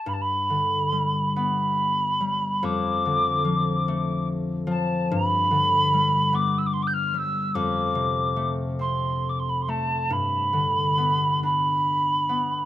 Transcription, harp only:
X:1
M:6/8
L:1/8
Q:3/8=47
K:Gmix
V:1 name="Harp" clef=bass
G,, D, G, B,2 G, | F,, D, F, A,2 F, | G,, D, G, B,2 G, | F,, C, A, C2 A, |
G,, D, B, D2 B, |]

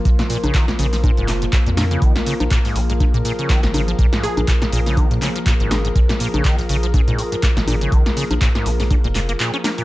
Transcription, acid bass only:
X:1
M:4/4
L:1/16
Q:"Swing 16ths" 1/4=122
K:Bbm
V:1 name="Acid bass" clef=bass
B,, B,, B,, D, E, B,,, D, F, B,, A,, B,, A,, B,, B,, B,, D, | E, B,,, D, F, B,, A,, B,, A,, B,, B,, B,, D, E, B,,, D, F, | B,, A,, B,, A,, B,, B,, B,, D, E, B,,, D, F, B,, A,, B,, A,, | B,, B,, B,, D, E, B,,, D, F, B,, A,, B,, A,, B,, B,, B,, D, |
E, B,,, D, F, B,, A,, B,, A,, B,, B,, A,, B, B,, D B, B,, |]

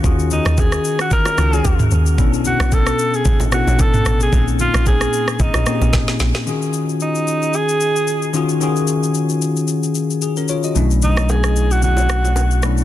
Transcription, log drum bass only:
X:1
M:4/4
L:1/16
Q:"Swing 16ths" 1/4=112
K:Ebm
V:1 name="Log drum bass" clef=bass
E,,3 E,,3 z4 D,,2 E,,2 E,,2 | =B,,,3 B,,,3 z2 =A,,, A,,,2 _B,,, A,,,2 A,,,2 | B,,,3 B,,,3 z2 A,,, B,,, z B,,, A,,, z B,,, z | z16 |
z16 | z16 |]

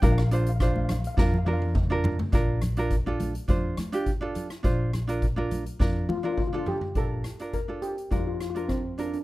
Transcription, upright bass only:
X:1
M:4/4
L:1/8
Q:1/4=104
K:Bb
V:1 name="Upright bass" clef=bass
B,,,4 F,,4 | B,,,4 F,, z3 | B,,,4 F,, z3 | B,,, z3 F,,4 |]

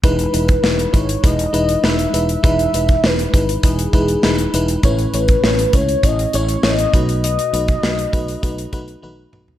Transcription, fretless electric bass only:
X:1
M:4/4
L:1/8
Q:1/4=100
K:E
V:1 name="Fretless electric bass" clef=bass
E,,, E,,, E,,, G,,, E,,, E,,, E,,, E,,, | E,,, E,,, E,,, G,,, E,,, E,,, E,,, E,,, | A,,, A,,, A,,, C,, A,,, A,,, A,,, B,,,- | B,,, B,,, B,,, B,,, B,,, B,,, B,,, B,,, |]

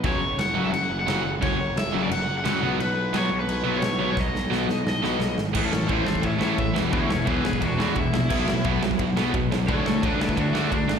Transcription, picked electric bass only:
X:1
M:4/4
L:1/8
Q:1/4=174
K:Bdor
V:1 name="Picked electric bass" clef=bass
F,,,2 F,,, F,,, F,,, F,,, F,,, F,,, | F,,,2 F,,, F,,, F,,, F,,, C,, B,,, | B,,,2 B,,, B,,, B,,, B,,, B,,, B,,, | B,,,2 B,,, B,,, B,,, B,,, B,,, G,,, |
A,,, F,, A,,, A,,, A,,, A,,, A,, E,,, | D,, E,,, B,,, E,,, E,,, E,,, E,,, _B,,, | B,,, A,, B,,, B,,, B,,, B,,, B,, B,,, | D,, D,, A,,, D,, D,, D,, D,, G,,, |]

